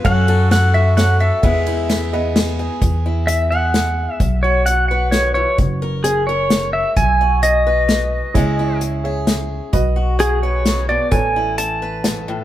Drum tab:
RD |xxx-x-|xxx-x-|------|------|
HH |------|------|x-x-x-|x-x-x-|
SD |--o-o-|--o-o-|----o-|----o-|
BD |o-----|o-----|o-----|o-----|

RD |------|------|------|------|
HH |x-x-x-|x-x-x-|x-x-x-|x-x-x-|
SD |----o-|----o-|----o-|----o-|
BD |o-----|o-----|o-----|o-----|

RD |------|
HH |x-x-x-|
SD |----o-|
BD |o-----|